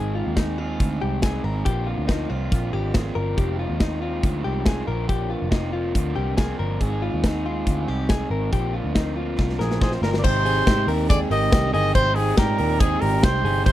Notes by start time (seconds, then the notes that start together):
Already playing: G#1 G#2 D#3 G#3 C4 D#4 G#4
0.15 F4
0.27 D#2
0.37 G#3 C4 D#4 G#4, kick, snare, closed hi-hat
0.58 G#3 C4 D#4 F4 G#4
0.80 D2 G#2 D#3 G#3 C4 D#4 G#4, kick, closed hi-hat
1.02 C2 G4
1.22 G#3 C4 D#4 G#4, kick, snare, closed hi-hat
1.44 G#1 A#4
1.65 A#1 A#2 D3 F3 A#3 C4 F4 G4, kick, closed hi-hat
1.86 F4
1.98 D2
2.07 F3 A#3 C4 D#4 F4, kick, snare, closed hi-hat
2.29 C2 F3 A#3 C4 F4
2.52 A#1 A#2 D3 F3 A#3 C4 F4, kick, closed hi-hat
2.73 G#1 G4
2.94 F3 A#3 C4 F4 G#4, kick, snare, closed hi-hat
3.15 G1 F3 A#3 C4 F4 A#4
3.37 F1 F2 C3 D#3 G#3 C4 F4 G4, kick, closed hi-hat
3.59 F4
3.69 D#2
3.78 D#3 G#3 C4 D#4 F4, kick, snare, closed hi-hat
4.01 D#3 G#3 C4 F4
4.23 D2 F2 C3 D#3 G#3 C4 F4, kick, closed hi-hat
4.44 C2 G4
4.65 D#3 G#3 C4 F4 G#4, kick, snare, closed hi-hat
4.87 A#1 A#2 D3 F3 A#3 C4 F4 A#4
5.09 G4, kick, closed hi-hat
5.30 F4
5.42 F1
5.51 F3 A#3 C4 D#4 F4, kick, snare, closed hi-hat
5.72 F3 A#3 C4 F4
5.95 D2 A#2 D3 F3 A#3 C4 F4, kick, closed hi-hat
6.16 C2 G4
6.37 F3 A#3 C4 F4 G#4, kick, snare, closed hi-hat
6.59 G1 A#4
6.80 G#1 G#2 D#3 G#3 C4 D#4 G#4, kick, closed hi-hat
7.02 F4
7.14 D#2
7.24 G#3 C4 D#4 G#4, kick, snare, closed hi-hat
7.45 G#3 C4 D#4 F4 G#4
7.66 D2 G#2 D#3 G#3 C4 D#4 G#4, kick, closed hi-hat
7.88 C2 G4
8.09 G#3 C4 D#4 G#4, kick, snare, closed hi-hat
8.30 G#1 A#4
8.52 A#1 A#2 D3 F3 A#3 C4 F4 G4, kick, closed hi-hat
8.73 F4
8.84 D2
8.95 F3 A#3 C4 D#4 F4, kick, snare, closed hi-hat
9.16 F3 A#3 C4 F4
9.38 C2 A#2 D3 F3 A#3 C4 F4, kick, snare
9.49 snare
9.59 A#1 G#2 G#4 A#4, snare
9.71 snare
9.81 G#2 F3 A#3 C4 F4 G#4 C5, kick, snare
9.92 snare
10.02 G1 A#2 F3 A#3 C4 F4 A#4, snare
10.14 D3, snare
10.18 D5
10.23 G#1 C3 G#3 C4 D#4 G4 C5, kick, crash
10.44 C4 D#4 G4 G#4, open hi-hat
10.66 G#2 G#3 C4 D#4 G4, kick, snare, hi-hat pedal, ride
10.87 D#2 C4 D#4 G4 A#4, open hi-hat
11.08 D3 G#3 C4 D#4 G4 G#4 D5, kick, hi-hat pedal, ride
11.30 G#1 D#3 G4 D#5, open hi-hat
11.51 C2 G#3 C4 D#4 G4, kick, snare, hi-hat pedal, ride
11.72 G1 D#3 C4 D#4 G4 G#4 D#5, open hi-hat
11.93 G#1 C3 G#3 C4 D#4 G4 C5, kick, hi-hat pedal, ride
12.14 G#2 C4 D#4 G4 G#4, open hi-hat
12.35 G#2 A#2 G#3 C4 D#4 G4 A#4, kick, snare, hi-hat pedal, ride
12.58 D#2 C4 D#4 G4 A#4, open hi-hat
12.79 G#2 G#3 C4 D#4 G4 G#4, kick, hi-hat pedal, ride
13.00 G#1 A#2 G4 A#4, open hi-hat
13.22 C2 C3 G#3 C4 D#4 G4 C5, kick, snare, hi-hat pedal, ride
13.44 G1 D#4 G4 G#4, open hi-hat
13.48 C4
13.64 G#1 C3 G#3 C4 C5, kick, hi-hat pedal, ride
13.68 D#4 G4